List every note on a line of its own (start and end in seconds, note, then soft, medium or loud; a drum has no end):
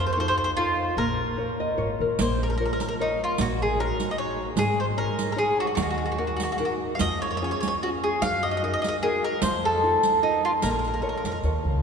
0.00 0.29 F2 medium
0.00 0.16 F3 medium
0.07 0.11 C5 medium
0.13 0.19 C5 medium
0.17 0.49 D#4 soft
0.17 0.49 F4 soft
0.17 0.49 A4 soft
0.17 0.27 C5 medium
0.28 0.36 C5 medium
0.38 0.43 C5 medium
0.44 0.50 C5 medium
0.57 0.89 D#4 soft
0.57 0.94 F4 medium
0.57 0.90 F4 soft
0.57 0.90 A4 soft
0.97 1.50 A#1 medium
0.97 1.36 A#3 medium
0.97 1.97 A#4 medium
1.37 1.70 F4 soft
1.37 1.70 A#4 soft
1.37 1.60 C#5 soft
1.60 1.77 D#5 medium
1.77 1.98 G#1 medium
1.77 2.10 F4 soft
1.77 2.00 A#4 soft
1.77 2.11 C#5 soft
2.00 2.17 A#1 medium
2.00 2.18 A#4 soft
2.19 2.71 A#1 medium
2.19 2.58 A#3 medium
2.19 2.41 C5 medium
2.19 riq medium
2.43 2.48 A#4 medium
2.50 2.55 A#4 soft
2.57 2.91 F4 soft
2.57 2.63 A#4 medium
2.57 2.92 A#4 soft
2.57 2.92 C#5 soft
2.66 2.71 A#4 soft
2.73 2.79 A#4 medium
2.80 2.86 A#4 soft
2.80 riq soft
2.89 2.93 A#4 medium
2.99 3.20 D#4 medium
2.99 3.31 F4 soft
2.99 3.31 A#4 soft
2.99 3.31 C#5 soft
3.24 3.41 F4 medium
3.38 3.90 A#1 medium
3.38 3.77 A#3 medium
3.38 3.60 F#4 medium
3.38 riq medium
3.62 3.78 G#4 medium
3.78 4.10 D#4 soft
3.78 4.10 F#4 soft
3.78 4.10 A#4 medium
3.78 4.10 C#5 soft
4.00 riq soft
4.11 4.18 D#5 medium
4.18 4.50 D#4 soft
4.18 4.50 F#4 soft
4.18 4.46 C#5 medium
4.18 4.50 C#5 soft
4.56 5.08 G#1 medium
4.56 4.95 G#3 medium
4.56 4.78 G#4 medium
4.56 riq medium
4.80 4.85 C5 medium
4.96 5.28 D#4 soft
4.96 5.29 G#4 soft
4.96 5.30 A#4 medium
4.96 5.29 C#5 soft
5.19 riq soft
5.32 5.69 D#4 soft
5.32 5.37 A#4 medium
5.36 5.68 G#4 soft
5.36 5.58 G#4 medium
5.36 5.69 C#5 soft
5.60 5.66 F#4 medium
5.67 5.73 F#4 soft
5.75 6.30 D#2 medium
5.75 6.16 D#3 medium
5.75 5.81 F#4 medium
5.75 riq medium
5.83 5.89 F#4 medium
5.90 5.96 F#4 soft
5.98 6.04 F#4 soft
6.06 6.11 F#4 soft
6.12 6.17 F#4 soft
6.18 6.51 D#4 soft
6.18 6.26 F#4 soft
6.18 6.51 F#4 soft
6.18 6.51 A#4 soft
6.27 6.34 F#4 soft
6.37 6.42 F#4 medium
6.37 riq soft
6.43 6.49 F#4 soft
6.52 6.57 F#4 medium
6.58 6.92 D#4 soft
6.58 6.64 F#4 medium
6.58 6.92 F#4 soft
6.58 6.93 A#4 soft
6.58 riq soft
6.65 6.73 F#4 soft
6.95 7.00 F5 medium
6.99 7.53 F2 medium
6.99 7.40 F3 medium
6.99 7.21 D#5 medium
6.99 riq medium
7.22 7.29 C#5 medium
7.31 7.36 C#5 medium
7.37 7.43 C#5 medium
7.42 7.74 C#4 soft
7.42 7.74 F4 soft
7.42 7.75 G#4 soft
7.42 7.50 C#5 medium
7.51 7.59 C#5 medium
7.60 7.66 C#5 medium
7.60 riq soft
7.68 7.74 C#5 medium
7.83 8.15 C#4 soft
7.83 8.15 F4 soft
7.83 7.89 F#4 medium
7.83 8.15 G#4 soft
8.04 8.23 G#4 medium
8.22 8.74 F#2 medium
8.22 8.61 F#3 medium
8.22 8.45 F5 medium
8.22 riq medium
8.43 8.50 D#5 medium
8.51 8.56 D#5 medium
8.57 8.63 D#5 medium
8.62 8.94 D#4 soft
8.62 8.95 F#4 soft
8.62 8.95 A#4 soft
8.62 8.72 D#5 medium
8.74 8.81 D#5 medium
8.82 8.87 D#5 medium
8.82 riq soft
8.88 8.95 D#5 medium
9.02 9.34 D#4 soft
9.02 9.35 F#4 soft
9.02 9.23 G#4 medium
9.02 9.35 A#4 soft
9.24 9.41 A#4 medium
9.42 9.94 F2 medium
9.42 9.81 F3 medium
9.42 9.65 C5 medium
9.42 riq medium
9.65 10.19 A4 medium
9.83 10.15 D#4 soft
9.83 10.15 F4 soft
9.83 10.15 A4 soft
10.03 riq soft
10.22 10.54 D#4 soft
10.22 10.43 D#4 medium
10.22 10.54 F4 soft
10.22 10.55 A4 soft
10.45 10.50 F4 medium
10.62 11.04 A#1 medium
10.62 11.01 A#3 medium
10.62 10.70 A#4 medium
10.62 riq medium
10.71 10.78 A#4 soft
10.79 10.86 A#4 soft
10.85 10.93 A#4 soft
10.85 riq soft
10.94 11.00 A#4 soft
11.02 11.35 F4 soft
11.02 11.08 A#4 soft
11.02 11.35 A#4 soft
11.02 11.35 C#5 soft
11.09 11.16 A#4 soft
11.17 11.24 A#4 soft
11.24 11.41 F2 medium
11.24 11.31 A#4 medium
11.24 riq soft
11.32 11.38 A#4 soft
11.43 11.64 D#2 medium
11.43 11.76 F4 soft
11.43 11.77 A#4 soft
11.43 11.77 C#5 soft
11.43 riq soft
11.65 11.82 C#2 medium